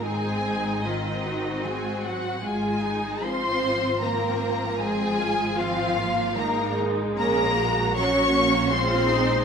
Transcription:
<<
  \new Staff \with { instrumentName = "Violin section" } { \time 3/4 \key f \phrygian \tempo 4 = 76 aes''4 ees''4 aes''8 ges''8 | aes''4 c'''4 bes''4 | aes''4 f''4 bes''8 r8 | bes''4 des'''4 c'''4 | }
  \new Staff \with { instrumentName = "Violin section" } { \time 3/4 \key f \phrygian aes'4 ees'4 aes'8 ges'8 | aes'4 c''4 bes'4 | aes'4 f'4 bes'8 r8 | bes'4 des''4 c''4 | }
  \new Staff \with { instrumentName = "Viola section" } { \time 3/4 \key f \phrygian << { ees'8 ees'8 f'8 ges'4. | f'8 ees'8 f'4 c'4 | c'8 f'4. ees'4 | des'8 ges'4. f'8 ees'8 | } \\ { c'4 c'2 | aes4 f4 f4~ | f4 c'8 bes8 aes4~ | aes4 ges8 bes8 aes4 | } >> }
  \new Staff \with { instrumentName = "Cello section" } { \clef bass \time 3/4 \key f \phrygian aes4 ees4 aes8 ges8 | aes4 c'4 bes4 | aes4 f4 bes8 r8 | bes4 des'4 c'4 | }
  \new Staff \with { instrumentName = "Double bass section" } { \clef bass \time 3/4 \key f \phrygian aes,,2. | aes,,2.~ | aes,,2. | bes,,2. | }
>>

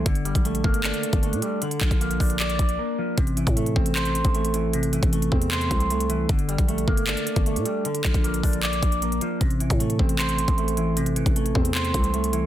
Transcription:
<<
  \new Staff \with { instrumentName = "Clean electric guitar" } { \time 4/4 \key a \phrygian \tempo 4 = 154 d8 g8 a8 bes8 d'4 a8 g8 | d8 f8 bes8 d'8 d''4 bes8 f8 | c8 e8 a8 c'8 c''4 a8 e8 | c8 e8 a8 c'8 c''4 a8 e8 |
d8 g8 a8 bes8 d'4 a8 g8 | d8 f8 bes8 d'8 d''4 bes8 f8 | c8 e8 a8 c'8 c''4 a8 e8 | c8 e8 a8 c'8 c''4 a8 e8 | }
  \new Staff \with { instrumentName = "808-style bass" } { \clef bass \time 4/4 \key a \phrygian g,,8. bes,,8. g,,8. r8 g,,8 bes,16 r8 | r8 bes,,16 bes,,8. bes,,4 bes,,8 r4 | a,,8. a,8. a,,4~ a,,16 a,,4~ a,,16~ | a,,8. a,,8. e,4 c,4. |
g,,8. bes,,8. g,,8. r8 g,,8 bes,16 r8 | r8 bes,,16 bes,,8. bes,,4 bes,,4 r8 | a,,8. a,8. a,,4~ a,,16 a,,4~ a,,16~ | a,,8. a,,8. e,4 c,4. | }
  \new DrumStaff \with { instrumentName = "Drums" } \drummode { \time 4/4 <hh bd>16 hh16 hh16 <hh bd>16 hh16 hh16 bd16 hh16 <hc hh>16 hh16 hh16 <hh bd>16 hh16 hh16 hh8 | hh16 hh16 <hc hh bd>16 <hh bd>16 hh16 hh16 <hho bd>16 hh16 <hc hh>16 hh16 <hh bd>16 hh16 r4 | <hh bd>16 hh16 hh16 <hh bd>16 hh16 hh16 bd16 hh16 <hc hh>16 hh16 hh16 <hh bd>16 hh16 hh16 hh8 | hh16 hh16 hh16 <hh bd>16 hh16 hh16 bd16 hh16 <hc hh>16 hh16 <hh bd>16 hh16 hh16 hh16 hh8 |
<hh bd>16 hh16 hh16 <hh bd>16 hh16 hh16 bd16 hh16 <hc hh>16 hh16 hh16 <hh bd>16 hh16 hh16 hh8 | hh16 hh16 <hc hh bd>16 <hh bd>16 hh16 hh16 <hho bd>16 hh16 <hc hh>16 hh16 <hh bd>16 hh16 hh16 hh16 hh8 | <hh bd>16 hh16 hh16 <hh bd>16 hh16 hh16 bd16 hh16 <hc hh>16 hh16 hh16 <hh bd>16 hh16 hh16 hh8 | hh16 hh16 hh16 <hh bd>16 hh16 hh16 bd16 hh16 <hc hh>16 hh16 <hh bd>16 hh16 hh16 hh16 hh8 | }
>>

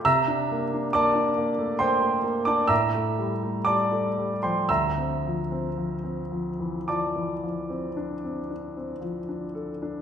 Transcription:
<<
  \new Staff \with { instrumentName = "Grand piano" } { \time 5/4 \key c \mixolydian \tempo 4 = 58 <e'' bes'' e'''>4 <d'' a'' d'''>4 <c'' g'' c'''>8. <d'' a'' d'''>16 <e'' bes'' e'''>4 <d'' a'' d'''>8. <c'' g'' c'''>16 | <e'' bes'' e'''>2 <d'' a'' d'''>2 r4 | }
  \new Staff \with { instrumentName = "Grand piano" } { \time 5/4 \key c \mixolydian c16 d'16 bes16 d'16 bes16 d'16 bes16 a16 bes16 a16 bes16 d'16 a,16 a16 g16 a16 g16 a16 g16 f16 | d,16 c'16 f16 c'16 f16 c'16 f16 e16 f16 e16 f16 c'16 d'16 c'16 d'16 c'16 f16 d'16 a'16 d'16 | }
>>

